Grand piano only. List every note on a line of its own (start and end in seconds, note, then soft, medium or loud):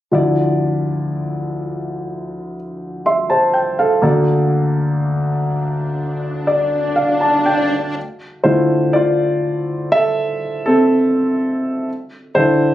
0.12 3.99 D2 soft
0.12 4.00 D3 soft
0.12 3.99 F3 soft
0.12 4.00 E4 soft
0.12 2.54 D5 medium
3.06 3.30 E5 soft
3.06 3.29 C6 soft
3.30 3.54 C5 soft
3.30 3.53 A5 soft
3.54 3.77 G5 soft
3.79 4.02 A4 soft
3.79 4.25 F5 soft
4.02 7.91 D2 medium
4.02 7.92 D3 medium
4.02 7.91 A#3 medium
4.02 7.92 A4 soft
4.02 6.46 D5 medium
6.47 6.93 D5 medium
6.96 7.19 F5 medium
7.21 7.44 A5 soft
7.46 7.92 G5 medium
8.44 9.89 D3 soft
8.44 9.89 A3 soft
8.44 8.91 E4 soft
8.44 8.94 F4 soft
8.44 8.95 C5 medium
8.93 9.90 F4 medium
8.93 9.95 D5 medium
9.92 10.63 A4 medium
9.92 10.68 E5 medium
10.66 11.36 C4 soft
10.66 11.35 A4 medium
12.35 12.74 D3 soft
12.35 12.74 D4 medium
12.35 12.74 E4 medium
12.35 12.74 A4 soft
12.35 12.74 C5 medium